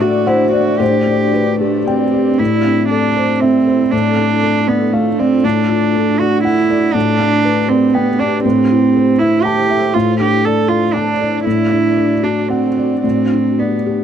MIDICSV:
0, 0, Header, 1, 4, 480
1, 0, Start_track
1, 0, Tempo, 532860
1, 722, Time_signature, 3, 2, 24, 8
1, 1690, Tempo, 512821
1, 3130, Tempo, 502513
1, 10810, Tempo, 522193
1, 11770, Tempo, 545951
1, 13124, End_track
2, 0, Start_track
2, 0, Title_t, "Felt piano"
2, 0, Program_c, 0, 0
2, 0, Control_c, 0, 64, 127
2, 0, Note_on_c, 0, 45, 82
2, 0, Note_on_c, 0, 62, 59
2, 0, Note_on_c, 0, 74, 62
2, 0, Note_on_c, 0, 76, 110
2, 13, Note_off_c, 0, 74, 0
2, 13, Note_on_c, 0, 74, 71
2, 14, Note_on_c, 0, 66, 60
2, 231, Note_off_c, 0, 74, 0
2, 242, Note_on_c, 0, 78, 63
2, 243, Note_on_c, 0, 72, 82
2, 389, Note_off_c, 0, 66, 0
2, 477, Note_on_c, 0, 74, 54
2, 623, Note_off_c, 0, 78, 0
2, 687, Note_off_c, 0, 45, 0
2, 687, Note_off_c, 0, 72, 0
2, 716, Note_on_c, 0, 72, 80
2, 719, Note_off_c, 0, 74, 0
2, 721, Note_on_c, 0, 45, 61
2, 739, Control_c, 0, 64, 0
2, 743, Note_off_c, 0, 76, 0
2, 745, Note_off_c, 0, 62, 0
2, 888, Control_c, 0, 64, 127
2, 966, Note_on_c, 0, 62, 43
2, 1172, Note_off_c, 0, 72, 0
2, 1207, Note_on_c, 0, 74, 47
2, 1211, Note_on_c, 0, 71, 55
2, 1355, Note_off_c, 0, 62, 0
2, 1447, Note_on_c, 0, 67, 48
2, 1593, Note_off_c, 0, 74, 0
2, 1657, Note_off_c, 0, 71, 0
2, 1689, Note_on_c, 0, 79, 49
2, 1835, Note_off_c, 0, 67, 0
2, 1933, Note_on_c, 0, 74, 47
2, 2080, Note_off_c, 0, 79, 0
2, 2139, Note_off_c, 0, 45, 0
2, 2175, Note_off_c, 0, 74, 0
2, 2176, Note_on_c, 0, 45, 56
2, 2193, Control_c, 0, 64, 0
2, 2352, Control_c, 0, 64, 127
2, 2417, Note_on_c, 0, 60, 46
2, 2659, Note_on_c, 0, 69, 44
2, 2797, Note_off_c, 0, 60, 0
2, 2895, Note_on_c, 0, 72, 44
2, 3037, Note_off_c, 0, 69, 0
2, 3130, Note_on_c, 0, 76, 50
2, 3276, Note_off_c, 0, 72, 0
2, 3377, Note_on_c, 0, 72, 51
2, 3518, Note_off_c, 0, 76, 0
2, 3576, Note_off_c, 0, 45, 0
2, 3617, Note_off_c, 0, 72, 0
2, 3619, Note_on_c, 0, 45, 58
2, 3634, Control_c, 0, 64, 0
2, 3796, Control_c, 0, 64, 127
2, 3859, Note_on_c, 0, 62, 46
2, 4101, Note_on_c, 0, 69, 42
2, 4243, Note_off_c, 0, 62, 0
2, 4341, Note_on_c, 0, 74, 51
2, 4485, Note_off_c, 0, 69, 0
2, 4583, Note_on_c, 0, 77, 53
2, 4727, Note_off_c, 0, 74, 0
2, 4828, Note_on_c, 0, 74, 49
2, 4969, Note_off_c, 0, 77, 0
2, 5029, Note_off_c, 0, 45, 0
2, 5067, Note_off_c, 0, 74, 0
2, 5069, Note_on_c, 0, 45, 55
2, 5080, Control_c, 0, 64, 0
2, 5221, Control_c, 0, 64, 127
2, 5309, Note_on_c, 0, 62, 42
2, 5548, Note_on_c, 0, 69, 45
2, 5694, Note_off_c, 0, 62, 0
2, 5785, Note_on_c, 0, 74, 47
2, 5932, Note_off_c, 0, 69, 0
2, 6028, Note_on_c, 0, 78, 53
2, 6170, Note_off_c, 0, 74, 0
2, 6265, Note_on_c, 0, 74, 52
2, 6411, Note_off_c, 0, 78, 0
2, 6470, Note_off_c, 0, 45, 0
2, 6504, Note_on_c, 0, 45, 60
2, 6505, Note_off_c, 0, 74, 0
2, 6522, Control_c, 0, 64, 0
2, 6692, Control_c, 0, 64, 127
2, 6742, Note_on_c, 0, 62, 49
2, 6983, Note_on_c, 0, 71, 50
2, 7120, Note_off_c, 0, 62, 0
2, 7215, Note_on_c, 0, 74, 52
2, 7360, Note_off_c, 0, 71, 0
2, 7459, Note_on_c, 0, 79, 56
2, 7597, Note_off_c, 0, 74, 0
2, 7697, Note_on_c, 0, 74, 52
2, 7840, Note_off_c, 0, 79, 0
2, 7894, Note_off_c, 0, 45, 0
2, 7935, Note_off_c, 0, 74, 0
2, 7943, Note_on_c, 0, 45, 61
2, 7950, Control_c, 0, 64, 0
2, 8096, Control_c, 0, 64, 127
2, 8192, Note_on_c, 0, 64, 47
2, 8428, Note_on_c, 0, 72, 51
2, 8561, Note_off_c, 0, 64, 0
2, 8662, Note_on_c, 0, 76, 46
2, 8797, Note_off_c, 0, 72, 0
2, 8897, Note_on_c, 0, 81, 54
2, 9034, Note_off_c, 0, 76, 0
2, 9136, Note_on_c, 0, 76, 50
2, 9275, Note_off_c, 0, 81, 0
2, 9332, Note_off_c, 0, 45, 0
2, 9372, Note_off_c, 0, 76, 0
2, 9380, Note_on_c, 0, 45, 62
2, 9384, Control_c, 0, 64, 0
2, 9557, Control_c, 0, 64, 127
2, 9618, Note_on_c, 0, 62, 44
2, 9861, Note_on_c, 0, 74, 46
2, 9995, Note_off_c, 0, 62, 0
2, 10092, Note_on_c, 0, 69, 46
2, 10235, Note_off_c, 0, 74, 0
2, 10334, Note_on_c, 0, 81, 45
2, 10472, Note_off_c, 0, 69, 0
2, 10580, Note_on_c, 0, 74, 50
2, 10716, Note_off_c, 0, 81, 0
2, 10778, Note_off_c, 0, 45, 0
2, 10815, Note_off_c, 0, 74, 0
2, 10822, Note_on_c, 0, 45, 53
2, 10827, Control_c, 0, 64, 0
2, 10964, Control_c, 0, 64, 127
2, 11055, Note_on_c, 0, 62, 43
2, 11285, Note_on_c, 0, 74, 43
2, 11431, Note_off_c, 0, 62, 0
2, 11526, Note_on_c, 0, 66, 39
2, 11671, Note_off_c, 0, 74, 0
2, 11773, Note_on_c, 0, 78, 40
2, 11911, Note_off_c, 0, 66, 0
2, 12011, Note_on_c, 0, 74, 38
2, 12151, Note_off_c, 0, 78, 0
2, 12216, Note_off_c, 0, 45, 0
2, 12247, Note_on_c, 0, 45, 45
2, 12249, Note_off_c, 0, 74, 0
2, 12262, Control_c, 0, 64, 0
2, 12410, Control_c, 0, 64, 127
2, 12493, Note_on_c, 0, 62, 36
2, 12733, Note_on_c, 0, 74, 35
2, 12877, Note_off_c, 0, 62, 0
2, 12970, Note_on_c, 0, 67, 33
2, 13113, Note_off_c, 0, 74, 0
2, 13124, Note_off_c, 0, 45, 0
2, 13124, Note_off_c, 0, 67, 0
2, 13124, End_track
3, 0, Start_track
3, 0, Title_t, "Ambient pad"
3, 0, Program_c, 1, 92
3, 0, Note_on_c, 1, 62, 79
3, 0, Note_on_c, 1, 66, 88
3, 0, Note_on_c, 1, 74, 89
3, 725, Note_off_c, 1, 66, 0
3, 728, Note_on_c, 1, 67, 77
3, 2177, Note_off_c, 1, 74, 0
3, 2178, Note_off_c, 1, 62, 0
3, 2178, Note_on_c, 1, 69, 69
3, 2180, Note_off_c, 1, 67, 0
3, 2181, Note_on_c, 1, 64, 67
3, 2183, Note_on_c, 1, 60, 66
3, 3578, Note_off_c, 1, 64, 0
3, 3579, Note_off_c, 1, 60, 0
3, 3618, Note_on_c, 1, 62, 67
3, 3620, Note_on_c, 1, 65, 67
3, 5067, Note_off_c, 1, 65, 0
3, 5074, Note_on_c, 1, 66, 61
3, 6468, Note_off_c, 1, 69, 0
3, 6510, Note_off_c, 1, 66, 0
3, 6512, Note_on_c, 1, 67, 66
3, 6513, Note_on_c, 1, 71, 62
3, 7934, Note_on_c, 1, 72, 59
3, 7935, Note_off_c, 1, 62, 0
3, 7936, Note_on_c, 1, 64, 62
3, 7936, Note_on_c, 1, 69, 67
3, 7937, Note_off_c, 1, 67, 0
3, 7937, Note_off_c, 1, 71, 0
3, 9366, Note_off_c, 1, 72, 0
3, 9367, Note_off_c, 1, 64, 0
3, 9369, Note_on_c, 1, 74, 58
3, 9370, Note_on_c, 1, 62, 63
3, 10810, Note_off_c, 1, 69, 0
3, 10819, Note_on_c, 1, 66, 59
3, 12250, Note_off_c, 1, 66, 0
3, 12252, Note_on_c, 1, 67, 60
3, 13124, Note_off_c, 1, 62, 0
3, 13124, Note_off_c, 1, 67, 0
3, 13124, Note_off_c, 1, 74, 0
3, 13124, End_track
4, 0, Start_track
4, 0, Title_t, "Cello"
4, 0, Program_c, 2, 42
4, 7, Note_on_c, 2, 66, 74
4, 249, Note_on_c, 2, 64, 72
4, 263, Note_off_c, 2, 66, 0
4, 467, Note_off_c, 2, 64, 0
4, 473, Note_on_c, 2, 66, 76
4, 712, Note_on_c, 2, 67, 71
4, 725, Note_off_c, 2, 66, 0
4, 1443, Note_off_c, 2, 67, 0
4, 1448, Note_on_c, 2, 57, 62
4, 1686, Note_on_c, 2, 60, 71
4, 1700, Note_off_c, 2, 57, 0
4, 2171, Note_on_c, 2, 64, 85
4, 2185, Note_off_c, 2, 60, 0
4, 2637, Note_off_c, 2, 64, 0
4, 2642, Note_on_c, 2, 62, 83
4, 3124, Note_on_c, 2, 60, 81
4, 3138, Note_off_c, 2, 62, 0
4, 3603, Note_on_c, 2, 62, 87
4, 3617, Note_off_c, 2, 60, 0
4, 4339, Note_on_c, 2, 59, 70
4, 4354, Note_off_c, 2, 62, 0
4, 4580, Note_on_c, 2, 57, 70
4, 4594, Note_off_c, 2, 59, 0
4, 4827, Note_on_c, 2, 60, 87
4, 4842, Note_off_c, 2, 57, 0
4, 5066, Note_on_c, 2, 62, 72
4, 5081, Note_off_c, 2, 60, 0
4, 5786, Note_on_c, 2, 66, 83
4, 5801, Note_off_c, 2, 62, 0
4, 6016, Note_off_c, 2, 66, 0
4, 6021, Note_on_c, 2, 64, 86
4, 6492, Note_on_c, 2, 62, 96
4, 6507, Note_off_c, 2, 64, 0
4, 7211, Note_on_c, 2, 60, 79
4, 7225, Note_off_c, 2, 62, 0
4, 7452, Note_on_c, 2, 59, 81
4, 7466, Note_off_c, 2, 60, 0
4, 7697, Note_on_c, 2, 62, 82
4, 7711, Note_off_c, 2, 59, 0
4, 7927, Note_off_c, 2, 62, 0
4, 7933, Note_on_c, 2, 60, 85
4, 8645, Note_on_c, 2, 64, 85
4, 8659, Note_off_c, 2, 60, 0
4, 8878, Note_on_c, 2, 67, 90
4, 8892, Note_off_c, 2, 64, 0
4, 9363, Note_on_c, 2, 65, 77
4, 9377, Note_off_c, 2, 67, 0
4, 9607, Note_off_c, 2, 65, 0
4, 9621, Note_on_c, 2, 67, 85
4, 9851, Note_on_c, 2, 69, 77
4, 9865, Note_off_c, 2, 67, 0
4, 10074, Note_on_c, 2, 65, 77
4, 10088, Note_off_c, 2, 69, 0
4, 10310, Note_on_c, 2, 62, 76
4, 10324, Note_off_c, 2, 65, 0
4, 10799, Note_off_c, 2, 62, 0
4, 10804, Note_on_c, 2, 64, 85
4, 11526, Note_on_c, 2, 62, 61
4, 11540, Note_off_c, 2, 64, 0
4, 11756, Note_on_c, 2, 60, 60
4, 11770, Note_off_c, 2, 62, 0
4, 12234, Note_off_c, 2, 60, 0
4, 12240, Note_on_c, 2, 60, 66
4, 12728, Note_on_c, 2, 59, 49
4, 12741, Note_off_c, 2, 60, 0
4, 13124, Note_off_c, 2, 59, 0
4, 13124, End_track
0, 0, End_of_file